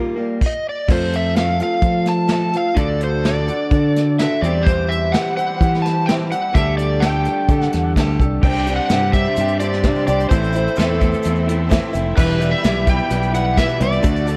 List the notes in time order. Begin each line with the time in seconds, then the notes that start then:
Already playing: D#3 G3 A#3 F4 A#4
0.16 G3 A#3 F4 A#4
0.41 kick, crash
0.46 D#5
0.69 D5
0.89 F2 F3 A3 C4 F4 A4 C5, kick, crash
1.13 E5, closed hi-hat
1.36 F3 A3 C4 F4 A4 F5, snare, closed hi-hat
1.59 C4 F4 A4 F5, closed hi-hat
1.82 F3 A3 C4 F4 A4, kick, closed hi-hat
2.06 A5, snare, closed hi-hat
2.28 F3 A3 C4 F4 A4, snare, closed hi-hat
2.34 A5
2.52 C4 F4 A4, closed hi-hat
2.57 F5
2.76 D2 D3 D4 F#4 A4 D5, kick, closed hi-hat
3.00 C5, closed hi-hat
3.23 D3 D4 F#4 A4 D5, snare, closed hi-hat
3.47 D4 F#4 A4, closed hi-hat
3.71 D3 D4 F#4, kick, closed hi-hat
3.75 A4
3.96 snare, closed hi-hat
4.19 D3 D4 F#4 A4 E5, snare, closed hi-hat
4.41 E2 E3 G4 C5 D5, closed hi-hat
4.46 G3 C4
4.63 C5, kick
4.67 E2 E3 G3 C4 E4 G4 C5, closed hi-hat
4.89 E5, closed hi-hat
5.12 E2 E3 G3 C4 G4 C5 F#5, snare, closed hi-hat
5.37 G3 C4 G4 C5 F#5, closed hi-hat
5.61 E3 G3 C4 G4 C5, kick, closed hi-hat
5.74 snare
5.82 A5, snare, closed hi-hat
6.06 E2 E3 G3 G5, snare, closed hi-hat
6.10 C4 G4 C5
6.31 G3 C4 G4 C5 F#5, closed hi-hat
6.53 D2 D3 G3 A3 D4 G4 A4 E5, kick, closed hi-hat
6.78 D5, closed hi-hat
7.00 D3 G3 G4 G5, snare, closed hi-hat
7.05 A4
7.25 G4 A4, closed hi-hat
7.31 G3
7.48 D3 G3 G4 A4, kick, closed hi-hat
7.61 F#5, snare
7.72 E2, snare, closed hi-hat
7.96 D2 D3 G3 G4 A4, kick, snare, closed hi-hat
8.20 C2 G3 G4 A4, kick, closed hi-hat
8.41 C2 D4 G4 C5 D5 G5 C6, kick, crash, shaker
8.45 C3 G3 C4 D4 G4
8.55 shaker
8.66 D4 G4, closed hi-hat, shaker
8.71 C4
8.76 F#5
8.89 G2 C3 G3 C4 G4, snare, closed hi-hat, shaker
8.94 D4
9.13 C3 G3 C4 D4 G4 E5, kick, snare, closed hi-hat, shaker
9.25 shaker
9.36 G2 G3 C4 D4, closed hi-hat, shaker
9.41 G4
9.48 closed hi-hat
9.60 G3 C4 D4 G4 D5, closed hi-hat, shaker
9.65 C3
9.73 snare
9.83 C3 G3 C4 D4 G4 C5 D5, kick, snare, closed hi-hat, shaker
9.95 closed hi-hat, shaker
10.07 C2 C4 D4 G4 D5, closed hi-hat, shaker
10.20 closed hi-hat
10.29 A1 A2 E3 A3 C4 E4 A4 C5, kick, closed hi-hat, shaker
10.34 A4 E5
10.42 closed hi-hat, shaker
10.53 C4 E4, closed hi-hat, shaker
10.58 A3
10.67 closed hi-hat
10.76 E2 A2 E3 A3 C4 A4, snare, closed hi-hat, shaker
10.80 E4
11.00 A2 E3 A3 C4 E4, kick, closed hi-hat, shaker
11.12 closed hi-hat, shaker
11.23 E2 E3 A3 C4 E4, closed hi-hat, shaker
11.35 shaker
11.48 A2 E3 A3 C4 E4, closed hi-hat
11.69 A2 E3 A3 C4 E4, kick, snare, closed hi-hat, shaker
11.82 shaker
11.93 F1 A3 C4 E4, closed hi-hat, shaker
12.15 E1 E2 B2 E3 G3 B3 E4 G4 B4 E5 B5, kick, crash, shaker
12.30 shaker
12.41 E3 G3 B3 E4, closed hi-hat, shaker
12.51 E5
12.64 B1 E2 B2 E3 G3 B3 E4, snare, closed hi-hat, shaker
12.87 E2 B2 E3 G3 B3 E4 G5, kick, snare, closed hi-hat, shaker
12.99 shaker
13.10 B1 E3 G3 B3 E4, closed hi-hat, shaker
13.22 closed hi-hat, shaker
13.32 B2 E3 G3 B3 E4 F#5, closed hi-hat, shaker
13.36 E2
13.57 E2 B2 E3 G3 B3 E4 E5, kick, snare, closed hi-hat, shaker
13.69 closed hi-hat, shaker
13.80 C2 E3 G3 B3 E4 D5, closed hi-hat, shaker
13.92 closed hi-hat
14.01 D2 D3 A3 D4 F#4 A4 D5 F#5 D6, kick, closed hi-hat, shaker
14.06 D5
14.16 closed hi-hat
14.26 A3 D4 F#4, closed hi-hat, shaker